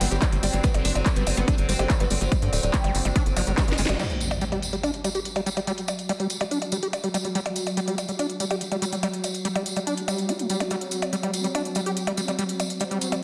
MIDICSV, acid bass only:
0, 0, Header, 1, 2, 480
1, 0, Start_track
1, 0, Tempo, 419580
1, 731, Time_signature, 4, 2, 24, 8
1, 15140, End_track
2, 0, Start_track
2, 0, Title_t, "Acid bass"
2, 0, Program_c, 0, 38
2, 10, Note_on_c, 0, 55, 81
2, 68, Note_off_c, 0, 55, 0
2, 130, Note_on_c, 0, 67, 78
2, 188, Note_off_c, 0, 67, 0
2, 370, Note_on_c, 0, 55, 77
2, 428, Note_off_c, 0, 55, 0
2, 490, Note_on_c, 0, 55, 107
2, 525, Note_off_c, 0, 55, 0
2, 610, Note_on_c, 0, 55, 79
2, 645, Note_off_c, 0, 55, 0
2, 730, Note_on_c, 0, 55, 102
2, 788, Note_off_c, 0, 55, 0
2, 1210, Note_on_c, 0, 55, 108
2, 1245, Note_off_c, 0, 55, 0
2, 1330, Note_on_c, 0, 55, 80
2, 1417, Note_off_c, 0, 55, 0
2, 1570, Note_on_c, 0, 55, 81
2, 1605, Note_off_c, 0, 55, 0
2, 1690, Note_on_c, 0, 62, 84
2, 1777, Note_off_c, 0, 62, 0
2, 1931, Note_on_c, 0, 55, 80
2, 1988, Note_off_c, 0, 55, 0
2, 2051, Note_on_c, 0, 67, 77
2, 2108, Note_off_c, 0, 67, 0
2, 2291, Note_on_c, 0, 55, 82
2, 2348, Note_off_c, 0, 55, 0
2, 2411, Note_on_c, 0, 55, 104
2, 2445, Note_off_c, 0, 55, 0
2, 2531, Note_on_c, 0, 55, 78
2, 2565, Note_off_c, 0, 55, 0
2, 2651, Note_on_c, 0, 55, 102
2, 2708, Note_off_c, 0, 55, 0
2, 3131, Note_on_c, 0, 55, 105
2, 3165, Note_off_c, 0, 55, 0
2, 3251, Note_on_c, 0, 55, 81
2, 3337, Note_off_c, 0, 55, 0
2, 3491, Note_on_c, 0, 55, 77
2, 3525, Note_off_c, 0, 55, 0
2, 3611, Note_on_c, 0, 62, 85
2, 3697, Note_off_c, 0, 62, 0
2, 3851, Note_on_c, 0, 54, 107
2, 3908, Note_off_c, 0, 54, 0
2, 3971, Note_on_c, 0, 55, 78
2, 4028, Note_off_c, 0, 55, 0
2, 4091, Note_on_c, 0, 55, 86
2, 4177, Note_off_c, 0, 55, 0
2, 4210, Note_on_c, 0, 59, 81
2, 4268, Note_off_c, 0, 59, 0
2, 4331, Note_on_c, 0, 56, 104
2, 4365, Note_off_c, 0, 56, 0
2, 4450, Note_on_c, 0, 55, 79
2, 4508, Note_off_c, 0, 55, 0
2, 4571, Note_on_c, 0, 55, 101
2, 4628, Note_off_c, 0, 55, 0
2, 5050, Note_on_c, 0, 55, 98
2, 5085, Note_off_c, 0, 55, 0
2, 5170, Note_on_c, 0, 55, 75
2, 5257, Note_off_c, 0, 55, 0
2, 5410, Note_on_c, 0, 55, 73
2, 5445, Note_off_c, 0, 55, 0
2, 5530, Note_on_c, 0, 62, 82
2, 5616, Note_off_c, 0, 62, 0
2, 5770, Note_on_c, 0, 55, 76
2, 5828, Note_off_c, 0, 55, 0
2, 5890, Note_on_c, 0, 67, 76
2, 5948, Note_off_c, 0, 67, 0
2, 6130, Note_on_c, 0, 55, 80
2, 6188, Note_off_c, 0, 55, 0
2, 6250, Note_on_c, 0, 55, 98
2, 6285, Note_off_c, 0, 55, 0
2, 6370, Note_on_c, 0, 55, 77
2, 6405, Note_off_c, 0, 55, 0
2, 6490, Note_on_c, 0, 55, 100
2, 6548, Note_off_c, 0, 55, 0
2, 6970, Note_on_c, 0, 55, 99
2, 7005, Note_off_c, 0, 55, 0
2, 7090, Note_on_c, 0, 55, 78
2, 7177, Note_off_c, 0, 55, 0
2, 7330, Note_on_c, 0, 55, 76
2, 7365, Note_off_c, 0, 55, 0
2, 7450, Note_on_c, 0, 62, 79
2, 7537, Note_off_c, 0, 62, 0
2, 7690, Note_on_c, 0, 55, 76
2, 7748, Note_off_c, 0, 55, 0
2, 7810, Note_on_c, 0, 67, 74
2, 7868, Note_off_c, 0, 67, 0
2, 8050, Note_on_c, 0, 55, 77
2, 8108, Note_off_c, 0, 55, 0
2, 8170, Note_on_c, 0, 55, 104
2, 8205, Note_off_c, 0, 55, 0
2, 8290, Note_on_c, 0, 55, 77
2, 8325, Note_off_c, 0, 55, 0
2, 8411, Note_on_c, 0, 55, 100
2, 8468, Note_off_c, 0, 55, 0
2, 8890, Note_on_c, 0, 55, 101
2, 8925, Note_off_c, 0, 55, 0
2, 9011, Note_on_c, 0, 55, 78
2, 9097, Note_off_c, 0, 55, 0
2, 9250, Note_on_c, 0, 55, 75
2, 9285, Note_off_c, 0, 55, 0
2, 9371, Note_on_c, 0, 62, 84
2, 9457, Note_off_c, 0, 62, 0
2, 9611, Note_on_c, 0, 55, 78
2, 9668, Note_off_c, 0, 55, 0
2, 9731, Note_on_c, 0, 67, 75
2, 9788, Note_off_c, 0, 67, 0
2, 9971, Note_on_c, 0, 55, 78
2, 10028, Note_off_c, 0, 55, 0
2, 10091, Note_on_c, 0, 55, 98
2, 10125, Note_off_c, 0, 55, 0
2, 10211, Note_on_c, 0, 55, 75
2, 10245, Note_off_c, 0, 55, 0
2, 10331, Note_on_c, 0, 55, 99
2, 10388, Note_off_c, 0, 55, 0
2, 10810, Note_on_c, 0, 55, 100
2, 10845, Note_off_c, 0, 55, 0
2, 10931, Note_on_c, 0, 55, 79
2, 11017, Note_off_c, 0, 55, 0
2, 11170, Note_on_c, 0, 55, 75
2, 11205, Note_off_c, 0, 55, 0
2, 11291, Note_on_c, 0, 62, 82
2, 11377, Note_off_c, 0, 62, 0
2, 11530, Note_on_c, 0, 55, 75
2, 11771, Note_on_c, 0, 67, 83
2, 11788, Note_off_c, 0, 55, 0
2, 11891, Note_on_c, 0, 56, 104
2, 11908, Note_off_c, 0, 67, 0
2, 11977, Note_off_c, 0, 56, 0
2, 12011, Note_on_c, 0, 55, 77
2, 12131, Note_on_c, 0, 67, 78
2, 12148, Note_off_c, 0, 55, 0
2, 12165, Note_off_c, 0, 67, 0
2, 12251, Note_on_c, 0, 55, 100
2, 12308, Note_off_c, 0, 55, 0
2, 12731, Note_on_c, 0, 55, 104
2, 12765, Note_off_c, 0, 55, 0
2, 12851, Note_on_c, 0, 55, 78
2, 12937, Note_off_c, 0, 55, 0
2, 13091, Note_on_c, 0, 55, 77
2, 13125, Note_off_c, 0, 55, 0
2, 13211, Note_on_c, 0, 62, 82
2, 13297, Note_off_c, 0, 62, 0
2, 13451, Note_on_c, 0, 55, 78
2, 13508, Note_off_c, 0, 55, 0
2, 13571, Note_on_c, 0, 67, 76
2, 13628, Note_off_c, 0, 67, 0
2, 13810, Note_on_c, 0, 55, 78
2, 13868, Note_off_c, 0, 55, 0
2, 13930, Note_on_c, 0, 55, 100
2, 13965, Note_off_c, 0, 55, 0
2, 14051, Note_on_c, 0, 55, 77
2, 14085, Note_off_c, 0, 55, 0
2, 14171, Note_on_c, 0, 55, 102
2, 14228, Note_off_c, 0, 55, 0
2, 14650, Note_on_c, 0, 55, 99
2, 14685, Note_off_c, 0, 55, 0
2, 14770, Note_on_c, 0, 55, 76
2, 14857, Note_off_c, 0, 55, 0
2, 15010, Note_on_c, 0, 55, 76
2, 15045, Note_off_c, 0, 55, 0
2, 15140, End_track
0, 0, End_of_file